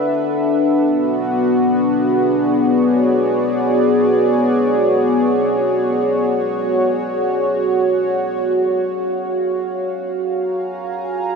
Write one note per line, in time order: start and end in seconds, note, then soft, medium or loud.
0.00 2.69 D4 medium
0.00 0.82 A4 medium
0.00 3.91 B4 medium
0.00 0.80 E5 medium
0.00 3.14 F#5 medium
0.82 8.56 B3 medium
0.91 11.36 F#4 medium
2.03 10.11 G#4 medium
2.43 8.57 D5 medium
2.63 11.36 C#5 medium
8.84 11.36 F5 medium
10.31 11.36 G#5 medium
10.31 11.36 A#5 medium